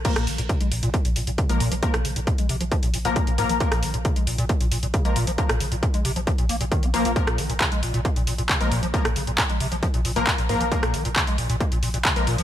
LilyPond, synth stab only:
\new Staff \with { instrumentName = "Synth stab" } { \time 4/4 \key bes \minor \tempo 4 = 135 <f bes bes'>8 r2 r8. <f bes bes'>16 r8 | <f bes bes'>16 r2 r8 <f bes bes'>8. <f bes bes'>8 | <f bes bes'>8 r2 r8. <f bes bes'>16 r8 | <f bes bes'>16 r2. r16 <f bes bes'>8 |
<f bes bes'>8 r2 r8. <f bes bes'>16 r8 | <f bes bes'>16 r2 r8 <f bes bes'>8. <f bes bes'>8 | <f bes bes'>8 r2 r8. <f bes bes'>16 r8 | }